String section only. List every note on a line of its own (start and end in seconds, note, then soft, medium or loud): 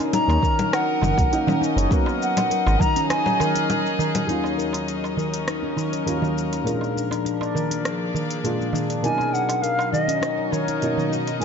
0.00 6.67 F#3 medium
0.00 6.67 D#4 medium
0.00 0.47 G#4 medium
0.00 2.87 A#4 medium
0.62 6.67 D#5 medium
2.99 5.24 G#4 medium
4.68 7.62 A#4 medium
4.75 6.66 C#4 medium
6.66 9.04 F3 medium
7.37 9.04 A#3 medium
7.74 9.04 D4 medium
7.74 9.99 G#4 medium
7.74 9.04 D5 medium
9.04 11.45 F#3 medium
10.08 11.45 D#4 medium
10.08 11.45 D#5 medium
10.13 11.45 A#4 medium